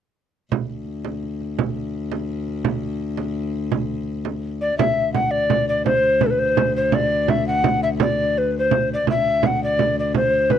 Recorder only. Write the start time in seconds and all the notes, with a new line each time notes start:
4.61 D5
4.78 E5
5.14 F#5
5.31 D5
5.69 D5
5.86 C5
6.23 A4 B4
6.30 B4
6.39 C5
6.76 C5
6.95 D5
7.30 E5
7.47 F#5
7.83 E5
8.02 D5
8.38 B4
8.58 C5
8.94 D5
9.10 E5
9.46 F#5
9.64 D5
9.99 D5
10.16 C5
10.51 B4